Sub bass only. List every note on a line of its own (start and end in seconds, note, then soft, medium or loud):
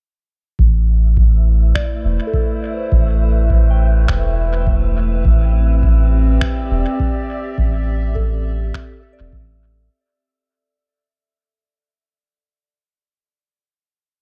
0.59 1.73 A1 medium
2.04 2.19 E1 medium
2.92 4.06 A1 medium
4.09 5.23 E1 loud
5.25 6.39 A1 medium
6.71 6.85 E1 medium
7.58 8.72 A1 medium
9.20 9.31 E1 loud
9.33 9.89 A1 medium